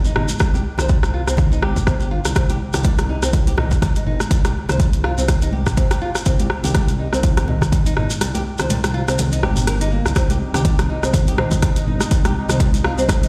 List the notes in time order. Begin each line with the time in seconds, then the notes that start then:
0.05 D#4, shekere
0.16 G1 D#4, cross-stick, mid tom
0.28 high conga, shekere
0.39 C2 G3, kick, cross-stick, shekere
0.54 C2 G4, high conga, shekere
0.78 C2 C5, cross-stick, low conga, shekere
0.88 G3, kick, high conga, shekere
1.03 cross-stick, shekere
1.14 F4
1.27 C2 C4, cross-stick, shekere
1.37 kick, high conga, low conga, shekere
1.52 D#4, shekere
1.62 G1 G4, cross-stick, high conga
1.76 kick, mid tom, high conga, shekere
1.87 C4, kick, cross-stick, shekere
2.00 G4, shekere
2.11 F4
2.25 C2, cross-stick, shekere
2.35 C2 C4, kick, cross-stick, closed hi-hat, shekere
2.49 C2 G4, closed hi-hat, high conga, shekere
2.73 C2 G4, cross-stick, closed hi-hat, low conga, shekere
2.83 G3, kick, closed hi-hat, high conga, shekere
2.98 cross-stick, closed hi-hat, shekere
3.09 D#4
3.22 C2 C4, cross-stick, shekere
3.33 kick, closed hi-hat, low conga, shekere
3.47 G4, closed hi-hat, high conga, shekere
3.57 D#4, cross-stick, mid tom, low conga
3.71 kick, low conga, shekere
3.82 G3, kick, cross-stick, closed hi-hat, shekere
3.96 D#4, closed hi-hat, shekere
4.06 G1 D#4, mid tom
4.20 cross-stick, high conga, shekere
4.31 C2 G3, kick, closed hi-hat, shekere
4.45 C2 G4, cross-stick, closed hi-hat, high conga, shekere
4.69 C2 C5, cross-stick, closed hi-hat, low conga, shekere
4.78 G3, kick, closed hi-hat, high conga, shekere
4.93 closed hi-hat, shekere
5.04 F4, cross-stick
5.18 C2 C4, shekere
5.28 kick, cross-stick, closed hi-hat, high conga, low conga, shekere
5.42 D#4, closed hi-hat, shekere
5.52 G4, high conga
5.66 kick, cross-stick, mid tom, shekere
5.77 C4, kick, closed hi-hat, shekere
5.91 G4, cross-stick, closed hi-hat, shekere
6.02 F4
6.15 cross-stick, shekere
6.25 C2 C4, kick, closed hi-hat, shekere
6.39 C2 G4, closed hi-hat, high conga, shekere
6.50 cross-stick
6.64 C2 G4, closed hi-hat, low conga, shekere
6.74 G3, kick, cross-stick, closed hi-hat, high conga, shekere
6.88 closed hi-hat, shekere
6.99 D#4
7.13 C2 C4, cross-stick, shekere
7.23 kick, closed hi-hat, low conga, shekere
7.37 G4, cross-stick, closed hi-hat, high conga, shekere
7.48 D#4, mid tom, low conga
7.62 kick, cross-stick, low conga, shekere
7.72 G3, kick, closed hi-hat, shekere
7.86 D#4, closed hi-hat, shekere
7.96 G1 D#4, cross-stick, mid tom
8.10 high conga, shekere
8.21 C2 G3, cross-stick, closed hi-hat, shekere
8.34 C2 G4, closed hi-hat, high conga, shekere
8.58 C2 C5, cross-stick, closed hi-hat, low conga, shekere
8.70 G3, closed hi-hat, mid tom, high conga, shekere
8.84 cross-stick, closed hi-hat, shekere
8.94 F4
9.08 C2 C4, cross-stick, closed hi-hat, shekere
9.18 closed hi-hat, high conga, low conga, shekere
9.32 D#4, closed hi-hat, shekere
9.43 G1 G4, cross-stick, high conga
9.56 mid tom, high conga, shekere
9.67 A#4, cross-stick, closed hi-hat, shekere
9.81 D#4, closed hi-hat, shekere
9.92 A#3
10.06 C2, cross-stick, shekere
10.15 C2 C3 G3 C4 D#4, kick, cross-stick, closed hi-hat, shekere
10.30 C2 G4, closed hi-hat, high conga, shekere
10.54 C2 G4, cross-stick, closed hi-hat, low conga, shekere
10.65 G3, kick, closed hi-hat, high conga, shekere
10.79 cross-stick, closed hi-hat, shekere
10.90 D#4
11.03 C2 C4, cross-stick, shekere
11.14 kick, closed hi-hat, low conga, shekere
11.27 G4, closed hi-hat, high conga, shekere
11.38 D#4 C5, cross-stick, mid tom, low conga
11.51 kick, low conga, shekere
11.62 G3, kick, cross-stick, closed hi-hat, shekere
11.76 D#4, closed hi-hat, shekere
11.87 G1 D#4, mid tom
12.00 cross-stick, high conga, shekere
12.11 C2 G3, kick, closed hi-hat, shekere
12.25 C2 G4, cross-stick, closed hi-hat, high conga, shekere
12.49 C2 C5, cross-stick, closed hi-hat, low conga, shekere
12.60 G3, kick, closed hi-hat, high conga, shekere
12.74 closed hi-hat, shekere
12.84 F4, cross-stick
12.98 C2 C4 C5, shekere
13.09 kick, cross-stick, closed hi-hat, high conga, low conga, shekere
13.23 D#4, closed hi-hat, shekere